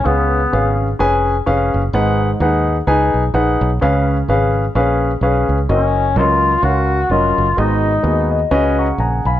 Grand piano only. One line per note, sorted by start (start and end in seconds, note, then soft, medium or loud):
0.04 0.75 C#3 medium
0.04 0.39 C#4 medium
0.04 0.39 G#4 medium
0.04 0.40 B4 medium
0.04 0.40 F5 medium
0.52 0.87 C#4 medium
0.52 0.87 G#4 medium
0.52 0.87 B4 medium
0.52 0.88 F5 medium
0.99 1.34 C#4 medium
0.99 1.34 G#4 medium
0.99 1.34 B4 medium
0.99 1.35 G#5 loud
1.46 1.81 C#4 medium
1.46 1.81 G#4 medium
1.46 1.81 B4 medium
1.46 1.81 F5 medium
1.94 2.64 G#2 medium
1.94 2.28 D#4 medium
1.94 2.28 G#4 medium
1.94 2.29 B4 medium
1.94 2.29 F#5 medium
2.41 2.75 D#4 medium
2.41 2.75 G#4 medium
2.41 2.76 B4 medium
2.41 2.76 F#5 medium
2.87 3.22 D#4 medium
2.87 3.22 G#4 medium
2.87 3.22 B4 medium
2.87 3.22 G#5 medium
3.34 3.69 D#4 medium
3.34 3.69 G#4 medium
3.34 3.69 B4 medium
3.34 3.69 F#5 medium
3.81 4.52 C#3 medium
3.81 4.16 C#4 medium
3.81 4.16 G#4 medium
3.81 4.16 B4 medium
3.81 4.16 F5 medium
4.29 4.63 C#4 medium
4.29 4.64 G#4 medium
4.29 4.64 B4 medium
4.29 4.64 F5 medium
4.75 5.10 C#4 medium
4.75 5.10 G#4 medium
4.75 5.10 B4 medium
4.75 5.10 F5 medium
5.23 5.57 C#4 medium
5.23 5.57 G#4 medium
5.23 5.57 B4 medium
5.23 5.57 F5 medium
5.69 6.04 C#4 medium
5.69 6.04 F#4 medium
5.69 6.04 A#4 medium
5.69 6.04 D#5 medium
6.16 6.51 F#3 medium
6.16 6.51 C#4 medium
6.16 6.51 A#4 medium
6.16 6.51 D#5 medium
6.62 6.97 C#4 medium
6.62 6.98 F#4 medium
6.62 6.98 A#4 medium
6.62 6.98 F5 medium
7.11 7.45 F#3 medium
7.11 7.45 C#4 medium
7.11 7.45 A#4 medium
7.11 7.45 D#5 medium
7.57 8.27 G#2 medium
7.57 7.92 B3 medium
7.57 7.92 F#4 medium
7.57 7.92 G#4 medium
7.57 7.92 D#5 medium
8.03 8.38 B3 medium
8.03 8.38 F#4 medium
8.03 8.38 G#4 medium
8.03 8.30 D#5 medium
8.31 8.50 D#5 medium
8.51 9.21 C#3 medium
8.51 8.86 C#4 medium
8.51 8.86 F#4 medium
8.51 8.86 B4 medium
8.51 8.86 D#5 loud
8.51 8.76 G#5 medium
8.79 8.97 F#5 medium
8.79 8.98 A#5 soft
8.79 8.97 C#6 medium
9.00 9.25 F#5 medium
9.00 9.24 G#5 medium
9.00 9.25 A#5 medium
9.26 9.40 F5 medium
9.26 9.40 G#5 medium
9.26 9.40 B5 medium